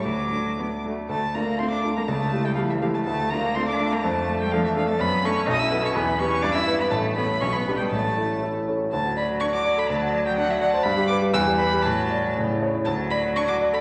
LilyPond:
<<
  \new Staff \with { instrumentName = "Violin" } { \time 2/4 \key d \major \tempo 4 = 122 d'''4. r8 | \key d \minor a''8 bes''8 c'''16 d'''8 bes''16 | a''8. g''16 f''16 e''16 f''16 a''16 | a''8 bes''8 c'''16 d'''8 bes''16 |
a''8. g''16 f''16 e''16 f''16 a''16 | \key d \major b''8 cis'''8 ees'''16 e'''8 cis'''16 | b''8 cis'''8 d'''16 e'''8 b''16 | a''8 b''8 cis'''16 b''8 g''16 |
a''4 r4 | a''8 b''8 cis'''16 d'''8 b''16 | a''8. g''16 fis''16 e''16 fis''16 a''16 | b''8 d'''8 e'''8 b''8 |
a''4 r4 | a''8 b''8 cis'''16 d'''8 b''16 | }
  \new Staff \with { instrumentName = "Grand piano" } { \time 2/4 \key d \major d,8 <a d' fis'>8 <a d' fis'>8 <a d' fis'>8 | \key d \minor d,8 <a d' f'>8 <a d' f'>8 <a d' f'>8 | cis,8 <a e' g'>8 <a e' g'>8 <a e' g'>8 | d,8 <a d' f'>8 <a d' f'>8 <a d' f'>8 |
f,8 <a d' a'>8 <a d' a'>8 <a d' a'>8 | \key d \major fis,8 <a d' a'>8 b,,8 <b fis' a'>8 | e,8 <b e' g'>8 g,8 <b e' b'>8 | a,,8 <cis' e' a'>8 b,,8 <b d' g'>8 |
a,,8 <cis' e' a'>8 <cis' e' a'>8 <cis' e' a'>8 | d,16 fis'16 d''16 fis'16 d'16 fis'16 d''16 a'16 | d,16 fis'16 d''16 fis'16 d'16 fis'16 d''16 c''16 | g,16 g'16 b'16 g'16 e,16 g'16 b'16 g'16 |
a,16 fis'16 d''16 fis'16 a,16 e'16 cis''16 e'16 | d,16 fis'16 d''16 fis'16 d'16 fis'16 d''16 a'16 | }
  \new Staff \with { instrumentName = "Cello" } { \time 2/4 \key d \major fis4 b8 a8 | \key d \minor a8 bes8 c'16 d'8 bes16 | a8. g16 f16 e16 f16 a16 | a8 bes8 c'16 d'8 bes16 |
a8. g16 f16 e16 f16 a16 | \key d \major b8 cis'8 ees'16 e'8 cis'16 | b8 cis'8 d'16 e'8 b16 | a8 b8 cis'16 b8 g16 |
a4 r4 | fis2~ | fis2 | g2 |
fis4 cis8 r8 | fis2 | }
>>